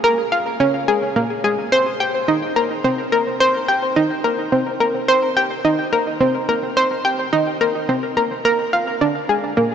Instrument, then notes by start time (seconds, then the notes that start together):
synth arpeggio sound
0.04 A#4
0.32 F5
0.60 C#4
0.88 G#4
1.16 A#3
1.44 G#4
1.72 C5
2.00 G5
2.28 D#4
2.56 A#4
2.84 C4
3.12 A#4
3.40 C5
3.68 G5
3.96 D#4
4.24 A#4
4.52 C4
4.80 A#4
5.08 C5
5.37 G5
5.65 D#4
5.93 A#4
6.21 C4
6.49 A#4
6.77 C5
7.05 G5
7.33 D#4
7.61 A#4
7.89 C4
8.17 A#4
8.45 A#4
8.73 F5
9.01 D4
9.29 G#4
9.57 A#3